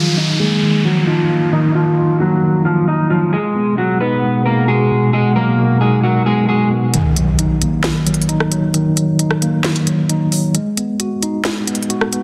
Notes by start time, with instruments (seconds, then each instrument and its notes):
Already playing: tine electric piano D#3 F#3, clean electric guitar F3 F4, downlifter
0.17 clean electric guitar D#4 D#5, tine electric piano D#4
0.40 clean electric guitar G#3 G#4, tine electric piano A#3
0.62 tine electric piano D#3
0.84 tine electric piano F3, clean electric guitar F#3 F#4
1.07 clean electric guitar F3 F4, tine electric piano D#4
1.30 tine electric piano A#3
1.52 tine electric piano D#3, clean electric guitar D#4 D#5
1.75 clean electric guitar F3 F4
1.98 tine electric piano D#4
2.20 clean electric guitar F#3 F#4, tine electric piano A#3
2.43 tine electric piano D#3
2.65 clean electric guitar F3 F4, tine electric piano F#3
2.88 clean electric guitar D#4 D#5, tine electric piano D#4
3.10 clean electric guitar F3 F4, tine electric piano F#3
3.33 ambient pad B2 G#4 F#5, tine electric piano G#3, clean electric guitar G#3 G#4
3.55 tine electric piano B3
3.78 clean electric guitar F#3 F#4, tine electric piano F#4
4.00 clean electric guitar B3 B4, tine electric piano D#4
4.23 tine electric piano G#3
4.46 clean electric guitar A#3 A#4, tine electric piano B3
4.68 clean electric guitar G#3 G#4, tine electric piano F#4
4.91 tine electric piano B2
5.13 tine electric piano G#3, clean electric guitar G#3 G#4, ambient pad A#4
5.36 tine electric piano F#3, clean electric guitar A#3 A#4
5.58 tine electric piano F#4
5.81 clean electric guitar G#3 G#4, tine electric piano D#4
6.03 clean electric guitar F#3 F#4, tine electric piano G#3
6.26 clean electric guitar G#3 G#4, tine electric piano B3
6.49 clean electric guitar G#3 G#4, tine electric piano F#4
6.71 tine electric piano B3
6.94 tine electric piano D#3, closed hi-hat, impact
7.16 tine electric piano F#3, closed hi-hat
7.39 tine electric piano D#4, closed hi-hat
7.62 tine electric piano A#3, closed hi-hat
7.84 tine electric piano D#3, snare, closed hi-hat
8.06 tine electric piano F#3, closed hi-hat
8.14 closed hi-hat
8.22 closed hi-hat
8.29 tine electric piano D#4, closed hi-hat
8.40 cross-stick
8.52 tine electric piano F#3, closed hi-hat
8.74 tine electric piano D#3, closed hi-hat
8.96 tine electric piano F#3, closed hi-hat
9.19 tine electric piano D#4, closed hi-hat
9.31 cross-stick
9.42 tine electric piano A#3, closed hi-hat
9.64 tine electric piano D#3, snare, closed hi-hat
9.76 closed hi-hat
9.87 tine electric piano F#3, closed hi-hat
10.09 tine electric piano D#4, closed hi-hat
10.32 tine electric piano F#3, open hi-hat
10.54 tine electric piano G#3, closed hi-hat
10.77 tine electric piano B3, closed hi-hat
11.00 tine electric piano F#4, closed hi-hat
11.23 tine electric piano D#4, closed hi-hat
11.45 tine electric piano G#3, snare, closed hi-hat
11.67 tine electric piano B3, closed hi-hat
11.75 closed hi-hat
11.83 closed hi-hat
11.90 tine electric piano F#4, closed hi-hat
12.01 cross-stick
12.13 tine electric piano B3, closed hi-hat